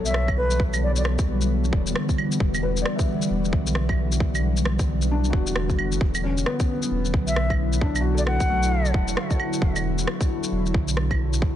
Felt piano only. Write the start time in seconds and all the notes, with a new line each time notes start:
Already playing: A4 C#5
0.10 C#5
2.63 B4
2.82 D5
2.96 E5
5.11 D4
5.30 F#4
6.24 C#4
6.47 B3
7.82 D4
8.01 F#4
8.14 A4
8.49 A3